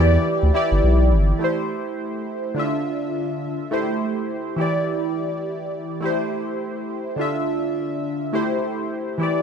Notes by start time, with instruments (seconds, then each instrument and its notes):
Already playing: sub bass E2, synth keys E3 E4 G4
0.00 synth keys D5
0.43 sub bass D2
0.54 synth keys E3 E4 G4 D5
0.72 sub bass G1
0.84 sub bass B1
1.13 sub bass G1
1.39 synth keys A3 E4 G4
1.44 synth keys C5
2.54 synth keys D3 D4 F4
2.59 synth keys E5
3.71 synth keys A3 E4 G4 C5
4.56 synth keys E3 E4 G4
4.61 synth keys D5
6.01 synth keys A3 E4 G4
6.06 synth keys C5
7.16 synth keys D3 D4 F4
7.21 synth keys E5
8.33 synth keys A3 E4 G4 C5
9.18 synth keys E3 E4 G4
9.23 synth keys D5